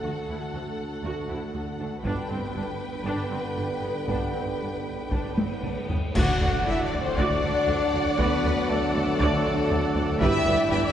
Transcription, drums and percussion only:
2.04 taiko medium
4.08 taiko medium
5.11 taiko medium
5.38 taiko high medium
5.63 taiko mid medium
5.89 taiko low medium
6.16 concert bass drum medium
6.16 taiko loud
6.16 crash medium
6.41 taiko low medium
7.18 taiko medium
7.69 taiko low medium
7.93 taiko low medium
8.19 taiko medium
8.44 taiko low medium
9.19 taiko loud
9.70 taiko low medium
9.95 taiko low medium
10.20 taiko loud
10.45 taiko low medium

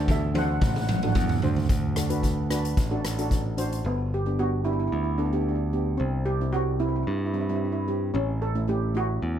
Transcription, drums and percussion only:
0.08 kick medium
0.08 high tom medium
0.35 high tom medium
0.61 kick loud
0.61 mid tom medium
0.76 mid tom medium
0.89 mid tom loud
1.03 mid tom medium
1.15 kick medium
1.15 mid tom medium
1.29 floor tom medium
1.42 floor tom medium
1.56 floor tom medium
1.69 kick loud
1.69 closed hi-hat medium
1.96 cross-stick medium
1.96 closed hi-hat medium
2.10 closed hi-hat medium
2.23 kick medium
2.23 closed hi-hat medium
2.51 cross-stick medium
2.51 closed hi-hat medium
2.65 closed hi-hat medium
2.77 kick loud
2.77 closed hi-hat medium
3.05 cross-stick medium
3.05 closed hi-hat medium
3.19 closed hi-hat medium
3.31 kick medium
3.31 closed hi-hat medium
3.58 closed hi-hat medium
3.73 closed hi-hat soft

